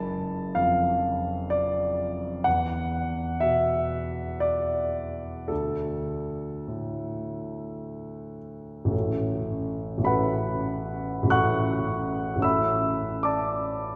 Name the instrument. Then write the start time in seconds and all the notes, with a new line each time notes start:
grand piano
Already playing: F#1 A5
0.55 F2 F5
1.50 D5
2.44 E2 F#5
3.40 B2 E5
4.40 D5
5.48 D2 A4
6.68 A2
8.85 A1 A3 C#4
8.90 F#4 A4
9.98 A1 A3 C#4
10.03 F#4 A4 B4 F#5 B5
11.23 A1 A3 C#4
11.27 F#4 A4 C#6 F#6
11.32 F#5
12.36 A1 A3 C#4
12.41 F#4 A4 E5 B5 E6
13.23 D5 A5 D6